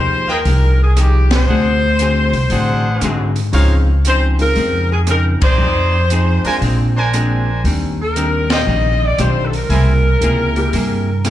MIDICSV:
0, 0, Header, 1, 8, 480
1, 0, Start_track
1, 0, Key_signature, -4, "minor"
1, 0, Tempo, 514139
1, 1383, Time_signature, 4, 2, 24, 8
1, 10550, End_track
2, 0, Start_track
2, 0, Title_t, "Trumpet section"
2, 0, Program_c, 0, 61
2, 257, Note_on_c, 0, 68, 70
2, 259, Note_on_c, 0, 65, 76
2, 259, Note_on_c, 0, 75, 72
2, 259, Note_on_c, 0, 79, 84
2, 366, Note_off_c, 0, 68, 0
2, 367, Note_off_c, 0, 75, 0
2, 368, Note_off_c, 0, 65, 0
2, 368, Note_off_c, 0, 79, 0
2, 1378, Note_on_c, 0, 78, 68
2, 1380, Note_on_c, 0, 62, 64
2, 1381, Note_on_c, 0, 68, 58
2, 1381, Note_on_c, 0, 72, 56
2, 1596, Note_off_c, 0, 78, 0
2, 1598, Note_off_c, 0, 62, 0
2, 1598, Note_off_c, 0, 68, 0
2, 1598, Note_off_c, 0, 72, 0
2, 2335, Note_on_c, 0, 68, 71
2, 2337, Note_on_c, 0, 72, 74
2, 2338, Note_on_c, 0, 78, 83
2, 2339, Note_on_c, 0, 62, 77
2, 3075, Note_off_c, 0, 68, 0
2, 3076, Note_off_c, 0, 72, 0
2, 3077, Note_off_c, 0, 62, 0
2, 3077, Note_off_c, 0, 78, 0
2, 3288, Note_on_c, 0, 72, 64
2, 3288, Note_on_c, 0, 73, 62
2, 3288, Note_on_c, 0, 77, 84
2, 3290, Note_on_c, 0, 63, 73
2, 3510, Note_off_c, 0, 72, 0
2, 3510, Note_off_c, 0, 73, 0
2, 3510, Note_off_c, 0, 77, 0
2, 3512, Note_off_c, 0, 63, 0
2, 5054, Note_on_c, 0, 74, 86
2, 5055, Note_on_c, 0, 63, 81
2, 5055, Note_on_c, 0, 68, 72
2, 5056, Note_on_c, 0, 72, 71
2, 5664, Note_off_c, 0, 74, 0
2, 5665, Note_off_c, 0, 63, 0
2, 5665, Note_off_c, 0, 68, 0
2, 5665, Note_off_c, 0, 72, 0
2, 6018, Note_on_c, 0, 62, 80
2, 6022, Note_on_c, 0, 72, 70
2, 6022, Note_on_c, 0, 80, 86
2, 6023, Note_on_c, 0, 70, 71
2, 6126, Note_off_c, 0, 62, 0
2, 6129, Note_off_c, 0, 70, 0
2, 6129, Note_off_c, 0, 72, 0
2, 6129, Note_off_c, 0, 80, 0
2, 6502, Note_on_c, 0, 70, 69
2, 6503, Note_on_c, 0, 72, 70
2, 6504, Note_on_c, 0, 62, 77
2, 6504, Note_on_c, 0, 80, 87
2, 7108, Note_off_c, 0, 70, 0
2, 7108, Note_off_c, 0, 72, 0
2, 7109, Note_off_c, 0, 62, 0
2, 7109, Note_off_c, 0, 80, 0
2, 7939, Note_on_c, 0, 74, 73
2, 7940, Note_on_c, 0, 65, 86
2, 7941, Note_on_c, 0, 72, 73
2, 7941, Note_on_c, 0, 79, 89
2, 8046, Note_off_c, 0, 74, 0
2, 8047, Note_off_c, 0, 65, 0
2, 8048, Note_off_c, 0, 72, 0
2, 8048, Note_off_c, 0, 79, 0
2, 9056, Note_on_c, 0, 64, 74
2, 9056, Note_on_c, 0, 70, 63
2, 9057, Note_on_c, 0, 80, 78
2, 9058, Note_on_c, 0, 72, 63
2, 9274, Note_off_c, 0, 64, 0
2, 9274, Note_off_c, 0, 70, 0
2, 9274, Note_off_c, 0, 80, 0
2, 9275, Note_off_c, 0, 72, 0
2, 10550, End_track
3, 0, Start_track
3, 0, Title_t, "Saxophone section"
3, 0, Program_c, 1, 65
3, 0, Note_on_c, 1, 72, 100
3, 268, Note_off_c, 1, 72, 0
3, 284, Note_on_c, 1, 70, 93
3, 753, Note_off_c, 1, 70, 0
3, 771, Note_on_c, 1, 68, 75
3, 906, Note_off_c, 1, 68, 0
3, 938, Note_on_c, 1, 67, 82
3, 1242, Note_off_c, 1, 67, 0
3, 1263, Note_on_c, 1, 72, 91
3, 3125, Note_off_c, 1, 72, 0
3, 3808, Note_on_c, 1, 72, 98
3, 3947, Note_off_c, 1, 72, 0
3, 4126, Note_on_c, 1, 70, 96
3, 4560, Note_off_c, 1, 70, 0
3, 4596, Note_on_c, 1, 68, 72
3, 4665, Note_off_c, 1, 68, 0
3, 4764, Note_on_c, 1, 70, 86
3, 4903, Note_off_c, 1, 70, 0
3, 5077, Note_on_c, 1, 72, 98
3, 6471, Note_off_c, 1, 72, 0
3, 7487, Note_on_c, 1, 70, 85
3, 7921, Note_off_c, 1, 70, 0
3, 7957, Note_on_c, 1, 75, 102
3, 8428, Note_off_c, 1, 75, 0
3, 8445, Note_on_c, 1, 74, 88
3, 8591, Note_off_c, 1, 74, 0
3, 8598, Note_on_c, 1, 72, 83
3, 8822, Note_off_c, 1, 72, 0
3, 8826, Note_on_c, 1, 69, 55
3, 8907, Note_off_c, 1, 69, 0
3, 8918, Note_on_c, 1, 70, 86
3, 10550, Note_off_c, 1, 70, 0
3, 10550, End_track
4, 0, Start_track
4, 0, Title_t, "Grand piano"
4, 0, Program_c, 2, 0
4, 3300, Note_on_c, 2, 56, 65
4, 3304, Note_on_c, 2, 60, 57
4, 3309, Note_on_c, 2, 63, 57
4, 3311, Note_on_c, 2, 65, 74
4, 3590, Note_off_c, 2, 56, 0
4, 3592, Note_off_c, 2, 60, 0
4, 3594, Note_off_c, 2, 63, 0
4, 3596, Note_off_c, 2, 65, 0
4, 4096, Note_on_c, 2, 56, 58
4, 4099, Note_on_c, 2, 60, 55
4, 4105, Note_on_c, 2, 63, 52
4, 4107, Note_on_c, 2, 65, 66
4, 4706, Note_off_c, 2, 56, 0
4, 4707, Note_off_c, 2, 60, 0
4, 4710, Note_off_c, 2, 63, 0
4, 4711, Note_off_c, 2, 65, 0
4, 6029, Note_on_c, 2, 56, 52
4, 6030, Note_on_c, 2, 60, 47
4, 6034, Note_on_c, 2, 62, 54
4, 6036, Note_on_c, 2, 65, 63
4, 6632, Note_off_c, 2, 56, 0
4, 6632, Note_off_c, 2, 60, 0
4, 6634, Note_off_c, 2, 62, 0
4, 6635, Note_off_c, 2, 65, 0
4, 8582, Note_on_c, 2, 55, 52
4, 8584, Note_on_c, 2, 60, 47
4, 8586, Note_on_c, 2, 62, 51
4, 8592, Note_on_c, 2, 65, 55
4, 8869, Note_off_c, 2, 55, 0
4, 8870, Note_off_c, 2, 60, 0
4, 8872, Note_off_c, 2, 62, 0
4, 8875, Note_off_c, 2, 65, 0
4, 9861, Note_on_c, 2, 56, 62
4, 9866, Note_on_c, 2, 58, 54
4, 9868, Note_on_c, 2, 64, 54
4, 9870, Note_on_c, 2, 67, 65
4, 10003, Note_off_c, 2, 56, 0
4, 10005, Note_off_c, 2, 58, 0
4, 10007, Note_off_c, 2, 64, 0
4, 10008, Note_off_c, 2, 67, 0
4, 10550, End_track
5, 0, Start_track
5, 0, Title_t, "Hollow-body jazz guitar"
5, 0, Program_c, 3, 26
5, 0, Note_on_c, 3, 53, 53
5, 0, Note_on_c, 3, 56, 54
5, 0, Note_on_c, 3, 63, 53
5, 0, Note_on_c, 3, 67, 60
5, 285, Note_off_c, 3, 53, 0
5, 289, Note_off_c, 3, 56, 0
5, 290, Note_off_c, 3, 63, 0
5, 293, Note_off_c, 3, 67, 0
5, 432, Note_on_c, 3, 53, 44
5, 440, Note_on_c, 3, 56, 47
5, 449, Note_on_c, 3, 63, 45
5, 452, Note_on_c, 3, 67, 45
5, 764, Note_off_c, 3, 53, 0
5, 769, Note_off_c, 3, 56, 0
5, 773, Note_off_c, 3, 63, 0
5, 775, Note_off_c, 3, 67, 0
5, 903, Note_on_c, 3, 53, 52
5, 913, Note_on_c, 3, 56, 57
5, 914, Note_on_c, 3, 63, 54
5, 917, Note_on_c, 3, 67, 59
5, 1240, Note_off_c, 3, 53, 0
5, 1245, Note_off_c, 3, 56, 0
5, 1245, Note_off_c, 3, 63, 0
5, 1247, Note_off_c, 3, 67, 0
5, 1391, Note_on_c, 3, 50, 41
5, 1395, Note_on_c, 3, 60, 48
5, 1402, Note_on_c, 3, 66, 46
5, 1405, Note_on_c, 3, 68, 47
5, 1724, Note_off_c, 3, 50, 0
5, 1726, Note_off_c, 3, 60, 0
5, 1730, Note_off_c, 3, 66, 0
5, 1731, Note_off_c, 3, 68, 0
5, 1874, Note_on_c, 3, 50, 57
5, 1876, Note_on_c, 3, 60, 58
5, 1880, Note_on_c, 3, 66, 66
5, 1885, Note_on_c, 3, 68, 72
5, 2205, Note_off_c, 3, 50, 0
5, 2206, Note_off_c, 3, 60, 0
5, 2209, Note_off_c, 3, 66, 0
5, 2211, Note_off_c, 3, 68, 0
5, 2349, Note_on_c, 3, 50, 49
5, 2353, Note_on_c, 3, 60, 48
5, 2361, Note_on_c, 3, 66, 47
5, 2364, Note_on_c, 3, 68, 57
5, 2683, Note_off_c, 3, 50, 0
5, 2685, Note_off_c, 3, 60, 0
5, 2689, Note_off_c, 3, 66, 0
5, 2690, Note_off_c, 3, 68, 0
5, 2831, Note_on_c, 3, 50, 64
5, 2840, Note_on_c, 3, 60, 65
5, 2841, Note_on_c, 3, 68, 69
5, 2843, Note_on_c, 3, 66, 67
5, 3164, Note_off_c, 3, 50, 0
5, 3168, Note_off_c, 3, 60, 0
5, 3169, Note_off_c, 3, 68, 0
5, 3170, Note_off_c, 3, 66, 0
5, 3304, Note_on_c, 3, 49, 51
5, 3309, Note_on_c, 3, 53, 57
5, 3317, Note_on_c, 3, 60, 53
5, 3322, Note_on_c, 3, 63, 57
5, 3640, Note_off_c, 3, 49, 0
5, 3643, Note_off_c, 3, 53, 0
5, 3647, Note_off_c, 3, 60, 0
5, 3649, Note_off_c, 3, 63, 0
5, 3793, Note_on_c, 3, 49, 59
5, 3797, Note_on_c, 3, 53, 59
5, 3802, Note_on_c, 3, 60, 61
5, 3804, Note_on_c, 3, 63, 69
5, 4124, Note_off_c, 3, 49, 0
5, 4126, Note_off_c, 3, 53, 0
5, 4129, Note_off_c, 3, 60, 0
5, 4130, Note_off_c, 3, 63, 0
5, 4266, Note_on_c, 3, 49, 42
5, 4269, Note_on_c, 3, 53, 44
5, 4275, Note_on_c, 3, 60, 51
5, 4278, Note_on_c, 3, 63, 52
5, 4601, Note_off_c, 3, 49, 0
5, 4602, Note_off_c, 3, 53, 0
5, 4605, Note_off_c, 3, 60, 0
5, 4607, Note_off_c, 3, 63, 0
5, 4750, Note_on_c, 3, 49, 61
5, 4761, Note_on_c, 3, 53, 58
5, 4761, Note_on_c, 3, 60, 59
5, 4768, Note_on_c, 3, 63, 61
5, 5083, Note_off_c, 3, 49, 0
5, 5088, Note_off_c, 3, 53, 0
5, 5088, Note_off_c, 3, 60, 0
5, 5091, Note_off_c, 3, 63, 0
5, 5232, Note_on_c, 3, 53, 45
5, 5232, Note_on_c, 3, 60, 44
5, 5237, Note_on_c, 3, 63, 43
5, 5247, Note_on_c, 3, 68, 44
5, 5563, Note_off_c, 3, 60, 0
5, 5564, Note_off_c, 3, 53, 0
5, 5566, Note_off_c, 3, 63, 0
5, 5571, Note_off_c, 3, 68, 0
5, 5708, Note_on_c, 3, 53, 58
5, 5711, Note_on_c, 3, 60, 67
5, 5716, Note_on_c, 3, 68, 60
5, 5719, Note_on_c, 3, 63, 67
5, 6041, Note_off_c, 3, 53, 0
5, 6043, Note_off_c, 3, 60, 0
5, 6045, Note_off_c, 3, 68, 0
5, 6047, Note_off_c, 3, 63, 0
5, 6186, Note_on_c, 3, 46, 45
5, 6190, Note_on_c, 3, 56, 53
5, 6197, Note_on_c, 3, 60, 56
5, 6201, Note_on_c, 3, 62, 54
5, 6520, Note_off_c, 3, 46, 0
5, 6522, Note_off_c, 3, 56, 0
5, 6526, Note_off_c, 3, 60, 0
5, 6528, Note_off_c, 3, 62, 0
5, 6662, Note_on_c, 3, 46, 57
5, 6670, Note_on_c, 3, 56, 58
5, 6673, Note_on_c, 3, 60, 65
5, 6677, Note_on_c, 3, 62, 66
5, 6998, Note_off_c, 3, 46, 0
5, 7002, Note_off_c, 3, 56, 0
5, 7004, Note_off_c, 3, 60, 0
5, 7005, Note_off_c, 3, 62, 0
5, 7142, Note_on_c, 3, 51, 48
5, 7150, Note_on_c, 3, 55, 55
5, 7158, Note_on_c, 3, 60, 51
5, 7163, Note_on_c, 3, 62, 53
5, 7478, Note_off_c, 3, 51, 0
5, 7482, Note_off_c, 3, 55, 0
5, 7486, Note_off_c, 3, 60, 0
5, 7488, Note_off_c, 3, 62, 0
5, 7622, Note_on_c, 3, 51, 53
5, 7628, Note_on_c, 3, 55, 55
5, 7629, Note_on_c, 3, 60, 63
5, 7637, Note_on_c, 3, 62, 59
5, 7958, Note_off_c, 3, 51, 0
5, 7960, Note_off_c, 3, 55, 0
5, 7961, Note_off_c, 3, 60, 0
5, 7965, Note_off_c, 3, 62, 0
5, 8099, Note_on_c, 3, 51, 41
5, 8107, Note_on_c, 3, 55, 42
5, 8113, Note_on_c, 3, 60, 49
5, 8116, Note_on_c, 3, 62, 45
5, 8436, Note_off_c, 3, 51, 0
5, 8440, Note_off_c, 3, 55, 0
5, 8443, Note_off_c, 3, 60, 0
5, 8445, Note_off_c, 3, 62, 0
5, 8582, Note_on_c, 3, 51, 55
5, 8585, Note_on_c, 3, 55, 59
5, 8594, Note_on_c, 3, 60, 55
5, 8598, Note_on_c, 3, 62, 66
5, 8917, Note_off_c, 3, 51, 0
5, 8919, Note_off_c, 3, 55, 0
5, 8924, Note_off_c, 3, 60, 0
5, 8925, Note_off_c, 3, 62, 0
5, 9063, Note_on_c, 3, 48, 43
5, 9070, Note_on_c, 3, 58, 46
5, 9076, Note_on_c, 3, 64, 49
5, 9086, Note_on_c, 3, 68, 49
5, 9398, Note_off_c, 3, 48, 0
5, 9402, Note_off_c, 3, 58, 0
5, 9405, Note_off_c, 3, 64, 0
5, 9410, Note_off_c, 3, 68, 0
5, 9543, Note_on_c, 3, 48, 67
5, 9551, Note_on_c, 3, 58, 69
5, 9552, Note_on_c, 3, 64, 69
5, 9560, Note_on_c, 3, 68, 68
5, 9878, Note_off_c, 3, 48, 0
5, 9882, Note_off_c, 3, 58, 0
5, 9883, Note_off_c, 3, 64, 0
5, 9886, Note_off_c, 3, 68, 0
5, 10025, Note_on_c, 3, 48, 49
5, 10027, Note_on_c, 3, 58, 45
5, 10031, Note_on_c, 3, 64, 54
5, 10038, Note_on_c, 3, 68, 57
5, 10359, Note_off_c, 3, 48, 0
5, 10360, Note_off_c, 3, 58, 0
5, 10362, Note_off_c, 3, 64, 0
5, 10366, Note_off_c, 3, 68, 0
5, 10502, Note_on_c, 3, 48, 69
5, 10507, Note_on_c, 3, 58, 64
5, 10510, Note_on_c, 3, 64, 73
5, 10514, Note_on_c, 3, 68, 63
5, 10550, Note_off_c, 3, 48, 0
5, 10550, Note_off_c, 3, 58, 0
5, 10550, Note_off_c, 3, 64, 0
5, 10550, Note_off_c, 3, 68, 0
5, 10550, End_track
6, 0, Start_track
6, 0, Title_t, "Upright bass"
6, 0, Program_c, 4, 32
6, 0, Note_on_c, 4, 39, 63
6, 392, Note_off_c, 4, 39, 0
6, 423, Note_on_c, 4, 36, 73
6, 1345, Note_off_c, 4, 36, 0
6, 1380, Note_on_c, 4, 38, 73
6, 2145, Note_off_c, 4, 38, 0
6, 2172, Note_on_c, 4, 36, 64
6, 2324, Note_off_c, 4, 36, 0
6, 2333, Note_on_c, 4, 33, 72
6, 2783, Note_off_c, 4, 33, 0
6, 2814, Note_on_c, 4, 44, 67
6, 3264, Note_off_c, 4, 44, 0
6, 3293, Note_on_c, 4, 37, 73
6, 4219, Note_off_c, 4, 37, 0
6, 4255, Note_on_c, 4, 41, 74
6, 5022, Note_off_c, 4, 41, 0
6, 5054, Note_on_c, 4, 40, 67
6, 5205, Note_off_c, 4, 40, 0
6, 5210, Note_on_c, 4, 41, 73
6, 5979, Note_off_c, 4, 41, 0
6, 6172, Note_on_c, 4, 34, 73
6, 7098, Note_off_c, 4, 34, 0
6, 7134, Note_on_c, 4, 39, 78
6, 8059, Note_off_c, 4, 39, 0
6, 8094, Note_on_c, 4, 34, 74
6, 8543, Note_off_c, 4, 34, 0
6, 8569, Note_on_c, 4, 35, 64
6, 9020, Note_off_c, 4, 35, 0
6, 9049, Note_on_c, 4, 36, 73
6, 9500, Note_off_c, 4, 36, 0
6, 9532, Note_on_c, 4, 37, 68
6, 9981, Note_off_c, 4, 37, 0
6, 10018, Note_on_c, 4, 43, 73
6, 10550, Note_off_c, 4, 43, 0
6, 10550, End_track
7, 0, Start_track
7, 0, Title_t, "Muted upright bass strokes"
7, 6015, Note_on_c, 9, 29, 34
7, 6109, Note_off_c, 9, 29, 0
7, 10550, End_track
8, 0, Start_track
8, 0, Title_t, "Drums"
8, 423, Note_on_c, 9, 46, 43
8, 517, Note_off_c, 9, 46, 0
8, 902, Note_on_c, 9, 42, 51
8, 904, Note_on_c, 9, 37, 57
8, 995, Note_off_c, 9, 42, 0
8, 997, Note_off_c, 9, 37, 0
8, 1220, Note_on_c, 9, 51, 57
8, 1222, Note_on_c, 9, 38, 73
8, 1314, Note_off_c, 9, 51, 0
8, 1316, Note_off_c, 9, 38, 0
8, 1858, Note_on_c, 9, 42, 49
8, 1951, Note_off_c, 9, 42, 0
8, 2179, Note_on_c, 9, 46, 37
8, 2272, Note_off_c, 9, 46, 0
8, 2332, Note_on_c, 9, 46, 46
8, 2426, Note_off_c, 9, 46, 0
8, 2813, Note_on_c, 9, 42, 51
8, 2815, Note_on_c, 9, 37, 60
8, 2907, Note_off_c, 9, 42, 0
8, 2909, Note_off_c, 9, 37, 0
8, 3134, Note_on_c, 9, 46, 35
8, 3228, Note_off_c, 9, 46, 0
8, 3296, Note_on_c, 9, 46, 44
8, 3390, Note_off_c, 9, 46, 0
8, 3779, Note_on_c, 9, 42, 48
8, 3873, Note_off_c, 9, 42, 0
8, 4099, Note_on_c, 9, 46, 36
8, 4192, Note_off_c, 9, 46, 0
8, 4253, Note_on_c, 9, 46, 44
8, 4346, Note_off_c, 9, 46, 0
8, 4731, Note_on_c, 9, 42, 51
8, 4733, Note_on_c, 9, 37, 57
8, 4825, Note_off_c, 9, 42, 0
8, 4827, Note_off_c, 9, 37, 0
8, 5056, Note_on_c, 9, 51, 68
8, 5058, Note_on_c, 9, 36, 73
8, 5149, Note_off_c, 9, 51, 0
8, 5151, Note_off_c, 9, 36, 0
8, 5696, Note_on_c, 9, 42, 46
8, 5789, Note_off_c, 9, 42, 0
8, 6018, Note_on_c, 9, 46, 39
8, 6111, Note_off_c, 9, 46, 0
8, 6179, Note_on_c, 9, 46, 44
8, 6272, Note_off_c, 9, 46, 0
8, 6662, Note_on_c, 9, 42, 51
8, 6663, Note_on_c, 9, 37, 57
8, 6755, Note_off_c, 9, 42, 0
8, 6757, Note_off_c, 9, 37, 0
8, 7141, Note_on_c, 9, 46, 45
8, 7234, Note_off_c, 9, 46, 0
8, 7619, Note_on_c, 9, 42, 49
8, 7713, Note_off_c, 9, 42, 0
8, 7936, Note_on_c, 9, 51, 63
8, 7937, Note_on_c, 9, 38, 71
8, 8029, Note_off_c, 9, 51, 0
8, 8031, Note_off_c, 9, 38, 0
8, 8575, Note_on_c, 9, 42, 53
8, 8577, Note_on_c, 9, 37, 58
8, 8668, Note_off_c, 9, 42, 0
8, 8670, Note_off_c, 9, 37, 0
8, 8900, Note_on_c, 9, 46, 35
8, 8994, Note_off_c, 9, 46, 0
8, 9056, Note_on_c, 9, 46, 45
8, 9149, Note_off_c, 9, 46, 0
8, 9537, Note_on_c, 9, 42, 51
8, 9631, Note_off_c, 9, 42, 0
8, 9860, Note_on_c, 9, 46, 36
8, 9953, Note_off_c, 9, 46, 0
8, 10018, Note_on_c, 9, 46, 46
8, 10111, Note_off_c, 9, 46, 0
8, 10499, Note_on_c, 9, 42, 55
8, 10501, Note_on_c, 9, 37, 61
8, 10550, Note_off_c, 9, 37, 0
8, 10550, Note_off_c, 9, 42, 0
8, 10550, End_track
0, 0, End_of_file